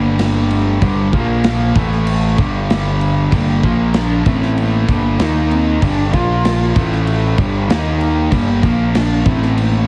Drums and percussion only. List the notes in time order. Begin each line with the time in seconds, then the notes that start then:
0.19 snare, crash
0.50 crash
0.82 kick, crash
1.13 kick, crash
1.44 snare, crash
1.76 kick, crash
1.92 snare
2.07 crash
2.38 kick, crash
2.70 snare, crash
3.01 crash
3.32 kick, crash
3.63 kick, crash
3.94 snare, crash
4.26 kick, crash
4.43 snare
4.58 crash
4.89 kick, crash
5.19 snare, crash
5.51 crash
5.82 kick, crash
6.14 kick, crash
6.45 snare, crash
6.76 kick, crash
6.92 snare
7.07 crash
7.38 kick, crash
7.70 snare, crash
8.01 crash
8.32 kick, crash
8.63 kick, crash
8.95 snare, crash
9.26 kick, crash
9.42 snare
9.57 crash